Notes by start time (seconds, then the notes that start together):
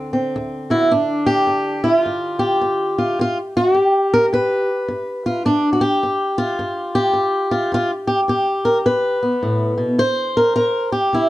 Already playing: D2 D3 C4 D4
0.13 C4
0.36 D2
0.70 E4 F#4
0.91 G2 D4
1.26 G4
1.47 G2
1.84 E4
1.97 F4
2.06 G2
2.39 G4
2.61 G2
2.98 F4
3.19 G2 F4
3.57 F#4
3.74 G2 G4
4.14 A#4
4.33 G2 B4
4.88 G2
5.26 F4
5.45 G2 D4
5.73 F#4
5.81 G4
6.03 G2
6.38 F4
6.59 G2
6.95 G4
7.13 G2
7.51 F4
7.72 G2 F4
8.07 G4
8.28 G2 G4
8.65 A#4
8.86 G2 B4
9.23 B3
9.43 A2
9.78 B2
9.99 C3 C5
10.37 A#4
10.56 C3 A#4
10.92 G4
11.13 C3 E4